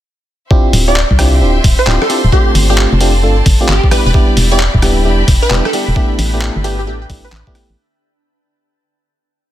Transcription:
0.51 C4 D4 E4 F4 G4 C5 E5 G5 C6, kick
0.73 D1, open hi-hat
0.88 C4 D4 E4 F4 G4 D5
0.96 F4, clap
1.11 C2, kick
1.19 C4 D4 E4 F4 G4, cross-stick, open hi-hat
1.35 G5
1.41 D1 C4 D4 E4 F4 G4
1.64 D1, kick, open hi-hat
1.79 C5
1.87 D1 C4 D4 E4 F4 G4, clap
2.02 A4, cross-stick
2.10 C4 D4 E4 F4 G4, open hi-hat
2.24 D1
2.32 A3 C4 D4 F4 G4 D5 A5, kick
2.52 G1 A4, open hi-hat
2.70 A3 C4 D4 F4 G4
2.78 clap
2.92 F1
3.00 A3 C4 D4 F4 G4, open hi-hat
3.23 G1 A3 C4 D4 F4 A4
3.46 G1, kick, open hi-hat
3.61 A3 C4 D4 F4 G4
3.69 G1 G4, clap
3.84 kick
3.91 G3 B3 D4 E4 G4 B4 E5 G5 B5, cross-stick, open hi-hat
4.06 E1 B4
4.12 G3 B3 D4 E4 G4 E5, kick
4.29 B4
4.37 E1, open hi-hat
4.51 G3 B3 D4 E4 G4 D5
4.60 clap
4.74 D1, kick
4.82 G3 B3 D4 E4 G4, cross-stick, open hi-hat
5.05 E1 G3 B3 D4 E4 G4
5.28 E1, kick, open hi-hat
5.42 B4
5.50 E1 G3 B3 D4 E4 G4, clap
5.65 A4, cross-stick
5.73 G3 B3 D4 E4 G4, open hi-hat
5.88 E1
5.96 A3 B3 D4 E4 G4, kick
6.19 A1, open hi-hat
6.33 A3 B3 D4 E4 G4
6.41 clap
6.56 G1
6.64 A3 B3 D4 E4 G4, open hi-hat
6.79 G4
6.87 A1 A3 B3 D4 E4 G4 A4
7.02 G4
7.10 A1 A3 B3 D4 E4 G4, kick, open hi-hat
7.25 B4
7.32 A1 B4, clap
7.47 A3 B3 D4 E4 G4, kick
7.55 cross-stick, open hi-hat
7.70 A1

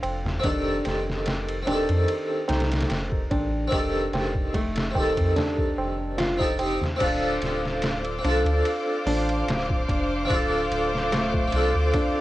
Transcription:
Already playing: C4 D4 F4 A4
0.03 F1, ride, tabla na
0.24 snare, tabla na, tabla ge
0.39 D#3 C4, tabla na
0.44 F1 D4 G4, kick, ride
0.49 A4
0.66 tabla na
0.85 F1, snare, ride, tabla na
1.08 snare, tabla na
1.26 snare, ride, tabla na
1.48 ride
1.62 D#3 C4
1.67 D#1 D4 G4, ride, tabla na
1.71 A4
1.89 F2, ride, tabla na
2.08 ride, tabla na
2.30 tabla na
2.48 C2 D#4, snare, ride, tabla na
2.60 snare, ride
2.70 snare, ride, tabla na
2.80 snare, ride
2.89 F1, snare, ride, tabla na
3.12 kick
3.31 A1 D4, kick, ride, tabla na
3.53 tabla na
3.68 D#3 C4
3.72 F1 G4, kick, ride, tabla na
3.78 A4
3.94 tabla na
4.13 F1, snare, ride, tabla na
4.35 kick, tabla na
4.54 A3, kick, ride, tabla na
4.76 snare, ride, tabla na
4.91 D#3 C4
4.95 D#1 G4, kick, tabla na
5.00 A4
5.17 F2, kick, ride, tabla na
5.36 D4, snare, ride, tabla na, tabla ge
5.58 kick, tabla na
5.77 F1, tabla na
6.00 tabla na
6.18 F4, snare, ride, tabla na
6.37 C4 D#4 G4, kick
6.42 A4
6.57 C4 D#4 G4, ride, tabla na
6.61 C5
6.81 snare, tabla na, tabla ge
6.96 C4 D4 D6
7.00 D1 D4 F4 C5 F5, kick, crash, ride
7.05 A4
7.41 D1, snare, ride
7.66 snare
7.82 snare, ride
8.05 ride
8.19 C4 D4
8.24 C2 D4 F4 A4, ride
8.45 D2, ride
8.65 ride
9.06 A1 D4, open hi-hat
9.29 ride
9.47 D1, snare, ride
9.70 kick
9.89 F1 D4, kick, ride
10.25 C4 D4
10.30 D1 F4 A4, kick, ride
10.70 D1, ride
10.95 snare
11.12 A3, snare, ride
11.34 kick
11.47 C4 D4
11.52 C2 F4, ride
11.57 A4
11.75 D2
11.94 D4, kick, ride

